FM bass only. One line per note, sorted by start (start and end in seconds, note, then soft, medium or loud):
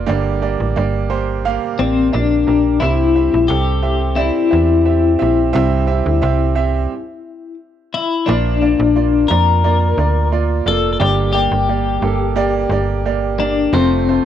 0.09 0.56 G1 loud
0.60 0.76 A1 medium
0.77 1.58 G1 loud
1.79 2.11 A1 medium
2.14 2.45 A#1 loud
2.48 2.79 A#1 medium
2.82 3.29 C2 loud
3.34 3.49 A#1 medium
3.50 4.31 C2 loud
4.53 5.17 E2 medium
5.22 5.53 A#1 medium
5.55 6.02 C2 loud
6.06 6.21 D2 medium
6.23 6.87 C2 loud
8.28 8.75 A#1 loud
8.79 9.26 A#1 loud
9.31 9.94 F2 loud
9.98 10.62 D2 medium
10.66 10.97 F1 medium
11.01 11.48 G1 loud
11.51 11.99 G1 medium
12.02 12.66 G1 medium
12.69 13.68 G1 medium
13.73 14.20 F1 loud